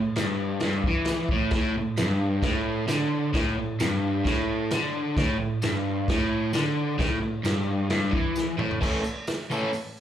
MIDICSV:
0, 0, Header, 1, 3, 480
1, 0, Start_track
1, 0, Tempo, 455927
1, 1615, Time_signature, 4, 2, 24, 8
1, 10529, End_track
2, 0, Start_track
2, 0, Title_t, "Overdriven electric guitar"
2, 0, Program_c, 0, 29
2, 0, Note_on_c, 0, 45, 71
2, 138, Note_off_c, 0, 45, 0
2, 180, Note_on_c, 0, 43, 97
2, 651, Note_off_c, 0, 43, 0
2, 664, Note_on_c, 0, 43, 114
2, 893, Note_off_c, 0, 43, 0
2, 919, Note_on_c, 0, 52, 100
2, 1379, Note_off_c, 0, 52, 0
2, 1385, Note_on_c, 0, 45, 110
2, 1612, Note_off_c, 0, 45, 0
2, 1636, Note_on_c, 0, 45, 115
2, 1858, Note_off_c, 0, 45, 0
2, 1877, Note_on_c, 0, 45, 69
2, 2057, Note_off_c, 0, 45, 0
2, 2093, Note_on_c, 0, 43, 103
2, 2564, Note_on_c, 0, 45, 113
2, 2565, Note_off_c, 0, 43, 0
2, 3028, Note_off_c, 0, 45, 0
2, 3032, Note_on_c, 0, 50, 101
2, 3505, Note_off_c, 0, 50, 0
2, 3510, Note_on_c, 0, 45, 108
2, 3752, Note_off_c, 0, 45, 0
2, 3768, Note_on_c, 0, 45, 71
2, 3961, Note_off_c, 0, 45, 0
2, 4001, Note_on_c, 0, 43, 112
2, 4469, Note_on_c, 0, 45, 115
2, 4477, Note_off_c, 0, 43, 0
2, 4951, Note_off_c, 0, 45, 0
2, 4980, Note_on_c, 0, 50, 106
2, 5446, Note_off_c, 0, 50, 0
2, 5450, Note_on_c, 0, 45, 108
2, 5668, Note_off_c, 0, 45, 0
2, 5680, Note_on_c, 0, 45, 69
2, 5876, Note_off_c, 0, 45, 0
2, 5929, Note_on_c, 0, 43, 103
2, 6401, Note_off_c, 0, 43, 0
2, 6426, Note_on_c, 0, 45, 119
2, 6884, Note_off_c, 0, 45, 0
2, 6888, Note_on_c, 0, 50, 104
2, 7350, Note_off_c, 0, 50, 0
2, 7354, Note_on_c, 0, 45, 110
2, 7581, Note_off_c, 0, 45, 0
2, 7594, Note_on_c, 0, 45, 73
2, 7793, Note_off_c, 0, 45, 0
2, 7824, Note_on_c, 0, 43, 111
2, 8307, Note_off_c, 0, 43, 0
2, 8320, Note_on_c, 0, 43, 115
2, 8542, Note_on_c, 0, 52, 102
2, 8558, Note_off_c, 0, 43, 0
2, 9026, Note_off_c, 0, 52, 0
2, 9031, Note_on_c, 0, 45, 104
2, 9263, Note_off_c, 0, 45, 0
2, 9274, Note_on_c, 0, 52, 85
2, 9276, Note_on_c, 0, 45, 92
2, 9285, Note_on_c, 0, 69, 102
2, 9289, Note_on_c, 0, 57, 96
2, 9289, Note_on_c, 0, 61, 102
2, 9476, Note_off_c, 0, 52, 0
2, 9477, Note_off_c, 0, 45, 0
2, 9482, Note_off_c, 0, 69, 0
2, 9484, Note_off_c, 0, 57, 0
2, 9484, Note_off_c, 0, 61, 0
2, 10004, Note_on_c, 0, 52, 91
2, 10009, Note_on_c, 0, 45, 87
2, 10013, Note_on_c, 0, 57, 86
2, 10018, Note_on_c, 0, 61, 98
2, 10025, Note_on_c, 0, 69, 98
2, 10203, Note_off_c, 0, 52, 0
2, 10206, Note_off_c, 0, 45, 0
2, 10208, Note_off_c, 0, 57, 0
2, 10210, Note_off_c, 0, 61, 0
2, 10214, Note_off_c, 0, 69, 0
2, 10529, End_track
3, 0, Start_track
3, 0, Title_t, "Drums"
3, 165, Note_on_c, 9, 49, 65
3, 173, Note_on_c, 9, 38, 114
3, 186, Note_on_c, 9, 54, 92
3, 270, Note_off_c, 9, 49, 0
3, 278, Note_off_c, 9, 38, 0
3, 291, Note_off_c, 9, 54, 0
3, 631, Note_on_c, 9, 49, 58
3, 640, Note_on_c, 9, 38, 112
3, 737, Note_off_c, 9, 49, 0
3, 745, Note_off_c, 9, 38, 0
3, 882, Note_on_c, 9, 36, 115
3, 987, Note_off_c, 9, 36, 0
3, 1104, Note_on_c, 9, 49, 61
3, 1113, Note_on_c, 9, 38, 109
3, 1132, Note_on_c, 9, 54, 86
3, 1209, Note_off_c, 9, 49, 0
3, 1218, Note_off_c, 9, 38, 0
3, 1237, Note_off_c, 9, 54, 0
3, 1357, Note_on_c, 9, 36, 110
3, 1462, Note_off_c, 9, 36, 0
3, 1585, Note_on_c, 9, 49, 54
3, 1594, Note_on_c, 9, 38, 111
3, 1597, Note_on_c, 9, 36, 108
3, 1691, Note_off_c, 9, 49, 0
3, 1699, Note_off_c, 9, 38, 0
3, 1702, Note_off_c, 9, 36, 0
3, 2071, Note_on_c, 9, 49, 61
3, 2080, Note_on_c, 9, 38, 110
3, 2080, Note_on_c, 9, 54, 91
3, 2177, Note_off_c, 9, 49, 0
3, 2185, Note_off_c, 9, 38, 0
3, 2186, Note_off_c, 9, 54, 0
3, 2552, Note_on_c, 9, 36, 107
3, 2553, Note_on_c, 9, 49, 59
3, 2561, Note_on_c, 9, 38, 116
3, 2658, Note_off_c, 9, 36, 0
3, 2658, Note_off_c, 9, 49, 0
3, 2666, Note_off_c, 9, 38, 0
3, 3028, Note_on_c, 9, 49, 64
3, 3036, Note_on_c, 9, 38, 114
3, 3041, Note_on_c, 9, 54, 106
3, 3133, Note_off_c, 9, 49, 0
3, 3141, Note_off_c, 9, 38, 0
3, 3146, Note_off_c, 9, 54, 0
3, 3516, Note_on_c, 9, 36, 98
3, 3517, Note_on_c, 9, 49, 63
3, 3525, Note_on_c, 9, 38, 105
3, 3621, Note_off_c, 9, 36, 0
3, 3622, Note_off_c, 9, 49, 0
3, 3630, Note_off_c, 9, 38, 0
3, 3998, Note_on_c, 9, 54, 97
3, 3999, Note_on_c, 9, 49, 60
3, 4007, Note_on_c, 9, 38, 117
3, 4103, Note_off_c, 9, 54, 0
3, 4104, Note_off_c, 9, 49, 0
3, 4113, Note_off_c, 9, 38, 0
3, 4477, Note_on_c, 9, 36, 102
3, 4483, Note_on_c, 9, 49, 60
3, 4492, Note_on_c, 9, 38, 111
3, 4582, Note_off_c, 9, 36, 0
3, 4589, Note_off_c, 9, 49, 0
3, 4597, Note_off_c, 9, 38, 0
3, 4954, Note_on_c, 9, 49, 63
3, 4962, Note_on_c, 9, 38, 112
3, 4962, Note_on_c, 9, 54, 85
3, 5059, Note_off_c, 9, 49, 0
3, 5068, Note_off_c, 9, 38, 0
3, 5068, Note_off_c, 9, 54, 0
3, 5439, Note_on_c, 9, 36, 108
3, 5439, Note_on_c, 9, 49, 57
3, 5447, Note_on_c, 9, 38, 104
3, 5544, Note_off_c, 9, 36, 0
3, 5544, Note_off_c, 9, 49, 0
3, 5552, Note_off_c, 9, 38, 0
3, 5917, Note_on_c, 9, 54, 87
3, 5923, Note_on_c, 9, 49, 59
3, 5931, Note_on_c, 9, 38, 115
3, 6022, Note_off_c, 9, 54, 0
3, 6028, Note_off_c, 9, 49, 0
3, 6037, Note_off_c, 9, 38, 0
3, 6403, Note_on_c, 9, 36, 111
3, 6408, Note_on_c, 9, 49, 62
3, 6416, Note_on_c, 9, 38, 114
3, 6508, Note_off_c, 9, 36, 0
3, 6513, Note_off_c, 9, 49, 0
3, 6521, Note_off_c, 9, 38, 0
3, 6876, Note_on_c, 9, 54, 82
3, 6887, Note_on_c, 9, 49, 62
3, 6896, Note_on_c, 9, 38, 111
3, 6982, Note_off_c, 9, 54, 0
3, 6993, Note_off_c, 9, 49, 0
3, 7001, Note_off_c, 9, 38, 0
3, 7360, Note_on_c, 9, 36, 105
3, 7362, Note_on_c, 9, 49, 59
3, 7371, Note_on_c, 9, 38, 110
3, 7465, Note_off_c, 9, 36, 0
3, 7468, Note_off_c, 9, 49, 0
3, 7476, Note_off_c, 9, 38, 0
3, 7839, Note_on_c, 9, 54, 81
3, 7841, Note_on_c, 9, 49, 66
3, 7849, Note_on_c, 9, 38, 121
3, 7944, Note_off_c, 9, 54, 0
3, 7946, Note_off_c, 9, 49, 0
3, 7955, Note_off_c, 9, 38, 0
3, 8314, Note_on_c, 9, 49, 63
3, 8322, Note_on_c, 9, 38, 118
3, 8419, Note_off_c, 9, 49, 0
3, 8428, Note_off_c, 9, 38, 0
3, 8559, Note_on_c, 9, 36, 106
3, 8664, Note_off_c, 9, 36, 0
3, 8797, Note_on_c, 9, 54, 94
3, 8815, Note_on_c, 9, 38, 63
3, 8902, Note_off_c, 9, 54, 0
3, 8920, Note_off_c, 9, 38, 0
3, 9043, Note_on_c, 9, 45, 97
3, 9148, Note_off_c, 9, 45, 0
3, 9169, Note_on_c, 9, 43, 81
3, 9274, Note_off_c, 9, 43, 0
3, 9286, Note_on_c, 9, 36, 109
3, 9295, Note_on_c, 9, 57, 110
3, 9391, Note_off_c, 9, 36, 0
3, 9401, Note_off_c, 9, 57, 0
3, 9520, Note_on_c, 9, 54, 72
3, 9625, Note_off_c, 9, 54, 0
3, 9760, Note_on_c, 9, 46, 51
3, 9763, Note_on_c, 9, 54, 82
3, 9769, Note_on_c, 9, 38, 109
3, 9866, Note_off_c, 9, 46, 0
3, 9868, Note_off_c, 9, 54, 0
3, 9874, Note_off_c, 9, 38, 0
3, 10011, Note_on_c, 9, 54, 69
3, 10116, Note_off_c, 9, 54, 0
3, 10243, Note_on_c, 9, 54, 67
3, 10254, Note_on_c, 9, 46, 55
3, 10349, Note_off_c, 9, 54, 0
3, 10359, Note_off_c, 9, 46, 0
3, 10497, Note_on_c, 9, 54, 23
3, 10529, Note_off_c, 9, 54, 0
3, 10529, End_track
0, 0, End_of_file